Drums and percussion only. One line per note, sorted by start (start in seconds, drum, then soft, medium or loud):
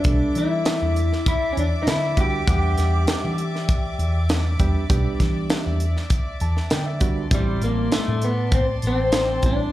0.04 kick loud
0.04 closed hi-hat medium
0.35 closed hi-hat medium
0.65 snare loud
0.65 closed hi-hat medium
0.96 closed hi-hat medium
1.13 snare soft
1.26 kick loud
1.26 closed hi-hat medium
1.57 closed hi-hat medium
1.87 snare loud
1.87 closed hi-hat medium
2.17 kick medium
2.17 closed hi-hat medium
2.47 kick loud
2.47 closed hi-hat medium
2.78 snare soft
2.78 closed hi-hat medium
3.07 snare loud
3.07 closed hi-hat medium
3.38 closed hi-hat medium
3.55 snare soft
3.69 kick loud
3.69 closed hi-hat medium
3.99 closed hi-hat medium
4.29 snare loud
4.29 closed hi-hat medium
4.59 kick medium
4.59 closed hi-hat medium
4.90 kick loud
4.90 closed hi-hat medium
5.20 kick medium
5.20 snare soft
5.20 closed hi-hat medium
5.50 snare loud
5.50 closed hi-hat medium
5.80 closed hi-hat medium
5.97 snare soft
6.10 kick medium
6.10 closed hi-hat medium
6.40 closed hi-hat medium
6.57 snare soft
6.70 snare loud
6.70 closed hi-hat medium
7.00 kick medium
7.00 closed hi-hat medium
7.31 kick loud
7.31 closed hi-hat medium
7.62 closed hi-hat medium
7.92 snare loud
7.92 closed hi-hat medium
8.22 closed hi-hat medium
8.52 kick medium
8.52 closed hi-hat medium
8.82 closed hi-hat medium
9.12 snare loud
9.12 closed hi-hat medium
9.42 kick medium
9.42 closed hi-hat medium